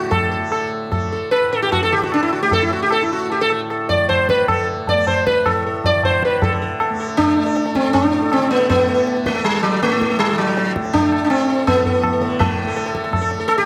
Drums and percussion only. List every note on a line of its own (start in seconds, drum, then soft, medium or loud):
0.02 tabla te medium
0.11 tabla tin loud
0.11 tabla ge loud
0.52 tabla na medium
0.92 tabla na medium
0.92 tabla ge medium
1.32 tabla na medium
1.72 tabla tin medium
1.72 tabla ge medium
1.92 tabla na medium
2.02 tabla ke medium
2.12 tabla na medium
2.31 tabla na medium
2.51 tabla na medium
2.51 tabla ge medium
2.71 tabla te medium
2.91 tabla na medium
3.30 tabla tin medium
3.50 tabla na medium
3.70 tabla na medium
3.89 tabla tin medium
3.89 tabla ge medium
4.09 tabla tin medium
4.09 tabla ge medium
4.29 tabla ke medium
4.48 tabla na medium
4.48 tabla ge medium
4.87 tabla tin medium
4.87 tabla ge medium
5.07 tabla tin medium
5.07 tabla ge medium
5.27 tabla ke medium
5.46 tabla na medium
5.46 tabla ge medium
5.84 tabla tin medium
5.84 tabla ge medium
6.03 tabla tin medium
6.03 tabla ge medium
6.22 tabla ke medium
6.42 tabla tin loud
6.42 tabla ge loud
6.80 tabla na medium
7.18 tabla na medium
7.18 tabla ge medium
7.56 tabla te medium
7.66 tabla te medium
7.75 tabla ke medium
7.85 tabla te medium
7.94 tabla tin medium
7.94 tabla ge medium
8.32 tabla na medium
8.70 tabla na medium
8.70 tabla ge medium
8.88 tabla te medium
9.07 tabla te medium
9.17 tabla te medium
9.26 tabla ke medium
9.36 tabla te medium
9.45 tabla tin medium
9.64 tabla na medium
9.83 tabla te medium
9.92 tabla te medium
10.01 tabla ke medium
10.11 tabla te medium
10.20 tabla na medium
10.39 tabla na medium
10.57 tabla te medium
10.66 tabla te medium
10.76 tabla ke medium
10.85 tabla te medium
10.94 tabla tin medium
10.94 tabla ge medium
11.12 tabla na medium
11.30 tabla na medium
11.67 tabla na medium
11.67 tabla ge medium
11.86 tabla ge medium
12.03 tabla na medium
12.03 tabla ge medium
12.22 tabla te medium
12.40 tabla tin loud
12.40 tabla ge loud
12.77 tabla te medium
12.86 tabla te medium
12.95 tabla ke medium
13.04 tabla te medium
13.13 tabla na medium
13.13 tabla ge medium
13.31 tabla te medium
13.49 tabla na medium